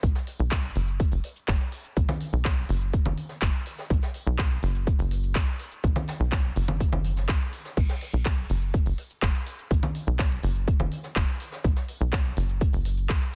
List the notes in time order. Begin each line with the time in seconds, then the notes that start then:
0.03 B1, kick, closed hi-hat, shaker
0.15 snare, shaker
0.27 closed hi-hat, open hi-hat
0.39 B1, shaker
0.51 kick, snare, clap, closed hi-hat, shaker
0.64 shaker
0.76 F#1, closed hi-hat, open hi-hat
0.88 shaker
0.99 kick, closed hi-hat, shaker
1.12 F#1, open hi-hat, shaker
1.24 closed hi-hat, open hi-hat
1.36 shaker
1.48 F#1, kick, snare, clap, closed hi-hat, shaker
1.60 snare, shaker
1.72 closed hi-hat, open hi-hat
1.84 shaker
1.96 B1, kick, closed hi-hat, shaker
2.09 snare, low conga, shaker
2.20 closed hi-hat, open hi-hat
2.33 B1, shaker
2.45 kick, snare, clap, closed hi-hat, shaker
2.57 shaker
2.69 F#1, closed hi-hat, open hi-hat
2.81 shaker
2.93 kick, closed hi-hat, shaker
3.06 F#1, low conga, shaker
3.18 closed hi-hat, open hi-hat
3.29 snare, shaker
3.42 F#1, kick, snare, clap, closed hi-hat, shaker
3.54 shaker
3.66 closed hi-hat, open hi-hat
3.78 snare, shaker
3.90 B1, kick, closed hi-hat, shaker
4.02 snare, shaker
4.14 closed hi-hat, open hi-hat
4.27 B1, shaker
4.38 kick, snare, clap, closed hi-hat, shaker
4.51 shaker
4.63 F#1, closed hi-hat, open hi-hat
4.75 shaker
4.86 kick, closed hi-hat, shaker
4.99 F#1, open hi-hat, shaker
5.11 closed hi-hat, open hi-hat
5.23 shaker
5.35 B1, kick, snare, clap, closed hi-hat, shaker
5.48 snare, shaker
5.60 closed hi-hat, open hi-hat
5.72 shaker
5.83 B1, kick, closed hi-hat, shaker
5.95 snare, low conga, shaker
6.08 snare, closed hi-hat, open hi-hat
6.20 B1, shaker
6.32 kick, snare, clap, closed hi-hat, shaker
6.44 shaker
6.56 F#1, closed hi-hat, open hi-hat
6.68 low conga, shaker
6.80 kick, closed hi-hat, shaker
6.93 F#1, low conga, shaker
7.05 closed hi-hat, open hi-hat
7.17 snare, shaker
7.28 B1, kick, snare, clap, closed hi-hat, shaker
7.41 shaker
7.52 closed hi-hat, open hi-hat
7.65 snare, shaker
7.77 B1, kick, closed hi-hat, crash, shaker
7.89 snare, shaker
8.01 closed hi-hat, open hi-hat
8.13 B1, shaker
8.25 kick, snare, clap, closed hi-hat, shaker
8.38 shaker
8.50 F#1, closed hi-hat, open hi-hat
8.62 shaker
8.74 kick, closed hi-hat, shaker
8.86 F#1, open hi-hat, shaker
8.98 closed hi-hat, open hi-hat
9.10 shaker
9.22 F#1, kick, snare, clap, closed hi-hat, shaker
9.34 snare, shaker
9.46 closed hi-hat, open hi-hat
9.59 shaker
9.71 B1, kick, closed hi-hat, shaker
9.83 snare, low conga, shaker
9.95 closed hi-hat, open hi-hat
10.07 B1, shaker
10.19 kick, snare, clap, closed hi-hat, shaker
10.31 shaker
10.43 F#1, closed hi-hat, open hi-hat
10.56 shaker
10.68 kick, closed hi-hat, shaker
10.80 F#1, low conga, shaker
10.92 closed hi-hat, open hi-hat
11.04 snare, shaker
11.16 F#1, kick, snare, clap, closed hi-hat, shaker
11.28 shaker
11.40 closed hi-hat, open hi-hat
11.52 snare, shaker
11.64 B1, kick, closed hi-hat, shaker
11.76 snare, shaker
11.88 closed hi-hat, open hi-hat
12.01 B1, shaker
12.12 kick, snare, clap, closed hi-hat, shaker
12.25 shaker
12.37 F#1, closed hi-hat, open hi-hat
12.49 shaker
12.61 kick, closed hi-hat, shaker
12.73 F#1, open hi-hat, shaker
12.85 closed hi-hat, open hi-hat
12.97 shaker
13.09 B1, kick, snare, clap, closed hi-hat, shaker
13.21 snare, shaker